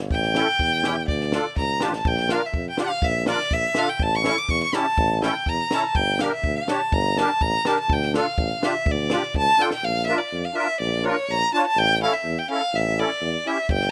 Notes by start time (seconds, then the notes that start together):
Already playing: G1
0.11 A1 G5, kick
0.22 snare
0.35 C#4 E4 A4, snare
0.59 E2, kick
0.83 C#4 E4 G4, snare
1.08 D2 D5, kick
1.20 snare
1.32 D4 F4 A4, snare
1.56 C#2 A#5, kick, snare
1.80 A1 D4 F4 G4 A5, snare
1.93 A5, snare
2.05 A#1 G5, kick
2.17 snare
2.29 D4 F4 A#4 F5, snare
2.46 E5
2.53 F2, kick
2.70 G5
2.77 D4 F4 G4, snare
2.82 F5
3.02 A#1 E5, kick
3.26 D4 F4 A#4 D5, snare
3.39 snare
3.51 A#1 E5, kick
3.75 D4 F4 A4 F5, snare
3.89 G5
4.00 A1 A5, kick
4.15 C#6
4.22 C#4 E4 A4, snare
4.38 D6
4.49 E2 C#6, kick
4.63 C#6
4.73 C#4 E4 G4 A5, snare
4.98 A1, kick
5.21 C#4 E4 A4 G5, snare
5.46 E2 A#5, kick
5.71 C#4 E4 A4 A5, snare
5.75 A5 A#5
5.85 A5
5.95 G1 G5, kick
6.19 D4 G4 A#4 F5, snare
6.34 E5
6.44 D2, kick
6.58 F5
6.68 D4 G4 C#5 A5, snare
6.92 G1 A#5, kick
7.17 D4 G4 A#4 A5, snare
7.41 A1 A#5, kick
7.65 D4 G4 A#4 A5, snare
7.80 A5
7.89 D2 G5, kick
8.02 snare
8.14 D4 F4 A4 F5, snare
8.37 A1, kick
8.62 D4 F4 G4 E5, snare
8.86 D2, kick
8.92 D5
9.10 D4 F4 G4, snare
9.23 snare
9.34 C#2 A5, kick
9.58 D4 F4 A4 G5, snare
9.71 G5, snare
9.82 A#1 F5
10.06 D4 F4 A#4 E5
10.18 D5
10.32 F2
10.45 F5
10.54 D4 F4 A#4 E5
10.80 A#1 D5
11.03 D4 F4 A#4 C#5
11.28 A#1 A#5
11.53 D4 F4 C#5 A5
11.67 A5
11.76 A1 G5
12.01 C#4 E4 A4 F5
12.13 E5
12.24 E2
12.39 G5
12.48 C#4 E4 A4 F5
12.73 A1 E5
12.98 C#4 E4 A4 D5
13.21 E2
13.46 C#4 E4 G4 E5
13.69 G1 G5, kick
13.81 snare